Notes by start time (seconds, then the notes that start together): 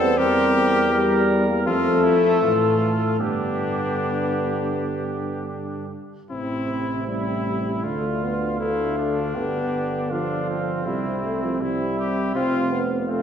Already playing: E2 G3 A4 C5
0.00 B3
0.18 E2 G3 C4 G4 A#4
0.93 G3 A#4
1.49 A#3
1.67 F2 F3 A3 F4 A4
2.04 E4
2.42 A2 E3 F4
2.80 A3
3.19 G2 D3 B3 D4 G4
6.31 A1 C3 C4 E4
7.07 G3 E4
7.84 D2 D3 A3 F4
8.23 B3
8.60 D3 A3 E4 F4
8.98 D4
9.35 G1 D3 B3 G4
10.11 F3 D4 F4
10.50 C4
10.86 C2 C3 G3 E4
11.25 A3
11.43 F3
11.61 C3 G3 E4
11.99 G4
12.35 F1 C3 C4 F4
12.72 B3
13.09 C3 A3 C4 F4